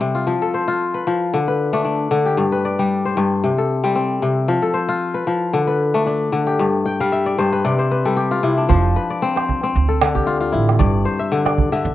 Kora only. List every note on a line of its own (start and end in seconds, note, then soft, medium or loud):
0.00 0.32 C3 medium
0.00 0.32 G3 medium
0.00 1.00 C4 medium
0.00 0.42 A4 medium
0.15 0.67 F4 medium
0.27 1.06 F3 medium
0.42 1.74 A4 medium
0.54 1.00 C5 medium
0.68 2.19 F4 medium
0.94 1.47 B4 medium
1.07 1.37 F3 medium
1.34 2.10 D3 medium
1.48 2.52 B4 medium
1.73 3.73 A3 medium
1.73 1.84 D4 medium
1.85 3.53 D4 medium
2.11 2.43 D3 medium
2.26 3.67 G4 medium
2.37 3.16 G2 medium
2.52 3.11 B4 medium
2.65 3.76 D5 medium
2.79 3.49 G3 medium
3.05 4.24 C5 medium
3.17 3.49 G2 medium
3.44 4.21 C3 medium
3.58 4.62 A4 medium
3.84 4.54 G3 medium
3.84 3.95 C4 medium
3.95 5.20 C4 medium
4.22 4.54 C3 medium
4.48 5.26 F3 medium
4.62 5.94 A4 medium
4.74 5.20 C5 medium
4.89 6.40 F4 medium
5.14 5.67 B4 medium
5.27 5.59 F3 medium
5.53 6.31 D3 medium
5.67 6.90 B4 medium
5.94 7.94 A3 medium
5.94 6.06 D4 medium
6.06 7.74 D4 medium
6.32 6.65 D3 medium
6.47 7.88 G4 medium
6.59 7.37 G2 medium
6.86 7.79 G5 medium
7.00 7.70 G3 medium
7.00 8.00 F5 medium
7.12 8.15 E5 medium
7.26 7.64 D5 medium
7.38 7.70 G2 medium
7.38 7.78 C5 medium
7.53 7.85 B4 medium
7.64 8.42 C3 medium
7.64 8.75 D5 medium
7.79 8.69 C5 medium
7.91 8.49 B4 medium
8.05 8.75 G3 medium
8.05 9.37 A4 medium
8.17 9.58 G4 medium
8.31 9.83 F4 medium
8.43 8.75 C3 medium
8.43 8.75 E4 medium
8.58 10.26 D4 medium
8.69 9.80 F3 medium
8.69 9.36 C5 medium
8.96 9.42 B4 medium
9.10 10.21 D5 medium
9.22 9.63 C4 medium
9.36 10.55 C5 medium
9.63 11.43 C4 medium
9.88 11.20 A4 medium
10.02 10.85 D3 medium
10.15 11.56 G4 medium
10.27 10.40 F4 medium
10.41 11.25 F4 medium
10.52 11.95 E4 medium
10.79 11.90 G2 medium
10.79 11.45 D5 medium
11.05 11.95 C5 medium
11.19 11.72 E5 medium
11.32 11.71 D3 medium
11.45 11.95 D5 medium
11.72 11.90 D3 medium
11.72 11.95 E5 medium